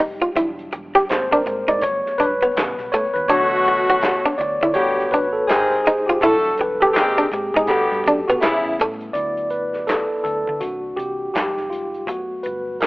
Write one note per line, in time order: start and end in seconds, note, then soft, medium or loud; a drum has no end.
0.00 0.26 F1 loud
0.00 0.32 G3 medium
0.00 0.33 G#3 soft
0.00 0.13 D#4 medium
0.00 0.33 D#4 medium
0.00 0.54 G4 medium
0.00 open hi-hat medium
0.22 0.30 F4 medium
0.22 closed hi-hat soft
0.36 0.67 E1 medium
0.36 1.06 F#3 medium
0.36 1.06 G3 medium
0.36 1.06 D4 medium
0.36 0.49 E4 medium
0.36 kick loud
0.36 closed hi-hat medium
0.59 closed hi-hat soft
0.72 1.04 E1 medium
0.72 muted hollow-body jazz guitar stroke soft
0.72 closed hi-hat medium
0.95 1.04 G4 medium
0.95 snare soft
1.09 1.41 G#1 medium
1.09 1.79 G3 soft
1.09 1.79 A#3 medium
1.09 1.79 C4 medium
1.09 1.32 C5 loud
1.09 snare loud
1.09 clap medium
1.09 closed hi-hat medium
1.31 1.41 D4 medium
1.31 1.69 A#4 medium
1.46 1.65 G#2 medium
1.46 muted hollow-body jazz guitar stroke soft
1.46 kick medium
1.46 closed hi-hat medium
1.68 1.81 G#2 medium
1.68 1.77 D#4 medium
1.68 1.83 D5 loud
1.68 kick medium
1.81 2.02 G1 medium
1.81 2.51 F#3 medium
1.81 2.52 A3 medium
1.81 2.52 B3 medium
1.81 2.20 C#5 loud
1.81 muted hollow-body jazz guitar stroke soft
1.81 kick medium
1.81 closed hi-hat medium
2.06 muted fingered electric bass stroke soft
2.06 snare soft
2.18 2.50 G1 medium
2.18 2.33 D4 medium
2.18 2.88 B4 loud
2.18 kick medium
2.18 snare soft
2.18 closed hi-hat medium
2.42 2.51 B3 medium
2.54 2.75 A1 loud
2.54 3.24 C#3 medium
2.54 3.25 G3 medium
2.54 3.25 B3 medium
2.54 snare loud
2.54 clap medium
2.54 closed hi-hat medium
2.78 2.90 B1 medium
2.78 snare soft
2.92 3.06 A3 medium
2.92 3.15 C#5 medium
2.92 closed hi-hat medium
3.14 3.27 D#2 medium
3.14 3.20 B4 medium
3.14 closed hi-hat soft
3.28 4.20 D2 loud
3.28 4.36 B2 medium
3.28 4.71 E3 medium
3.28 4.71 F#3 soft
3.28 4.36 A3 medium
3.28 4.71 B3 medium
3.28 3.42 D4 medium
3.28 4.36 F#4 medium
3.28 4.42 C#5 loud
3.28 kick loud
3.28 closed hi-hat medium
3.65 muted hollow-body jazz guitar stroke soft
3.65 closed hi-hat medium
3.90 3.98 F#4 medium
4.01 snare loud
4.01 clap medium
4.01 closed hi-hat medium
4.25 4.34 D4 medium
4.38 4.58 D2 medium
4.38 4.76 D5 medium
4.38 muted hollow-body jazz guitar stroke soft
4.38 kick medium
4.38 closed hi-hat soft
4.61 4.74 D3 loud
4.61 4.71 E4 medium
4.61 kick medium
4.73 5.07 G1 medium
4.73 5.11 D3 medium
4.73 5.44 A3 soft
4.73 5.11 B3 medium
4.73 5.44 B3 medium
4.73 5.44 F#4 medium
4.73 5.11 G4 medium
4.73 5.12 C#5 loud
4.73 kick medium
4.73 closed hi-hat medium
4.99 snare soft
5.11 5.50 A1 medium
5.11 5.26 D4 medium
5.11 5.34 B4 loud
5.11 kick medium
5.11 closed hi-hat medium
5.33 5.48 A4 medium
5.47 6.11 F1 medium
5.47 5.84 D#3 medium
5.47 6.18 G#3 medium
5.47 5.84 C4 medium
5.47 6.18 D#4 medium
5.47 6.05 G4 medium
5.47 5.84 G#4 medium
5.47 5.82 C5 medium
5.47 muted hollow-body jazz guitar stroke soft
5.47 snare loud
5.47 clap loud
5.47 closed hi-hat medium
5.71 snare soft
5.85 5.99 D#4 medium
5.85 6.07 G#4 medium
5.85 closed hi-hat medium
6.06 6.17 F4 medium
6.06 6.22 G4 medium
6.20 6.53 E1 loud
6.20 6.73 F#3 medium
6.20 6.73 G3 medium
6.20 6.57 A3 medium
6.20 6.73 D4 medium
6.20 6.36 E4 medium
6.20 6.57 F#4 medium
6.20 6.57 A4 medium
6.20 6.39 A4 medium
6.20 kick loud
6.20 closed hi-hat medium
6.44 closed hi-hat soft
6.57 6.89 E1 loud
6.57 6.79 B4 medium
6.57 muted hollow-body jazz guitar stroke soft
6.57 closed hi-hat medium
6.80 6.90 G4 medium
6.80 6.95 A4 medium
6.80 snare soft
6.94 7.26 G#1 medium
6.94 7.30 D#3 medium
6.94 7.65 A#3 medium
6.94 7.30 C4 medium
6.94 7.65 C4 medium
6.94 7.30 G4 medium
6.94 7.32 G4 medium
6.94 7.33 G#4 medium
6.94 snare loud
6.94 clap medium
6.94 closed hi-hat medium
7.18 7.26 D4 medium
7.32 7.50 G#2 medium
7.32 7.54 G4 medium
7.32 muted hollow-body jazz guitar stroke soft
7.32 kick medium
7.32 closed hi-hat soft
7.54 7.67 G#2 loud
7.54 7.64 D#4 medium
7.54 7.69 G#4 medium
7.54 kick medium
7.67 7.87 G1 loud
7.67 8.03 D3 medium
7.67 8.38 A3 soft
7.67 8.03 B3 medium
7.67 8.38 B3 medium
7.67 8.26 F#4 medium
7.67 8.03 G4 medium
7.67 8.06 A4 medium
7.67 muted hollow-body jazz guitar stroke soft
7.67 kick medium
7.67 closed hi-hat medium
7.91 8.03 G2 loud
7.91 snare soft
8.04 8.23 F#2 medium
8.04 8.20 D4 medium
8.04 8.28 G4 medium
8.04 kick medium
8.04 snare soft
8.04 closed hi-hat medium
8.28 8.40 B1 medium
8.28 8.37 B3 medium
8.28 8.41 F#4 medium
8.40 8.60 A1 loud
8.40 8.77 C#3 medium
8.40 9.11 G3 medium
8.40 8.76 B3 medium
8.40 9.11 B3 medium
8.40 9.11 C#4 medium
8.40 8.77 E4 medium
8.40 8.76 E4 medium
8.40 snare loud
8.40 clap medium
8.40 closed hi-hat medium
8.64 8.76 A1 medium
8.79 9.09 A2 loud
8.79 8.93 A3 medium
8.79 closed hi-hat medium
9.01 closed hi-hat soft
9.13 10.06 D2 medium
9.13 10.20 F#3 soft
9.13 10.20 B3 soft
9.13 10.21 E4 medium
9.13 9.48 D5 loud
9.13 kick medium
9.13 closed hi-hat medium
9.37 closed hi-hat soft
9.50 9.88 B4 medium
9.50 closed hi-hat medium
9.73 snare soft
9.87 10.04 A4 medium
9.87 snare loud
9.87 clap medium
9.87 closed hi-hat medium
10.24 10.43 D2 medium
10.24 10.61 A4 medium
10.24 kick medium
10.24 closed hi-hat soft
10.47 10.60 D3 medium
10.47 kick medium
10.60 10.92 C2 loud
10.60 11.30 E3 soft
10.60 11.31 A#3 soft
10.60 11.31 D4 medium
10.60 10.94 F#4 medium
10.60 kick medium
10.60 closed hi-hat medium
10.96 11.29 C2 medium
10.96 11.33 G4 medium
10.96 kick medium
10.96 closed hi-hat medium
11.34 12.08 F1 medium
11.34 12.04 G3 medium
11.34 12.04 G#3 soft
11.34 12.04 D#4 medium
11.34 11.71 G4 medium
11.34 snare loud
11.34 clap medium
11.34 closed hi-hat medium
11.57 snare soft
11.70 12.04 F4 medium
11.70 closed hi-hat medium
11.94 closed hi-hat soft
12.07 12.38 G1 loud
12.07 12.77 F#3 medium
12.07 12.77 A3 soft
12.07 12.77 B3 medium
12.07 12.41 F#4 medium
12.07 kick loud
12.07 closed hi-hat medium
12.43 12.82 G1 loud
12.43 12.81 B4 medium
12.43 closed hi-hat medium
12.80 12.87 G#1 medium
12.80 12.87 G3 medium
12.80 12.87 A#3 medium
12.80 12.87 C4 medium
12.80 12.87 A#4 medium
12.80 snare loud
12.80 clap medium
12.80 closed hi-hat medium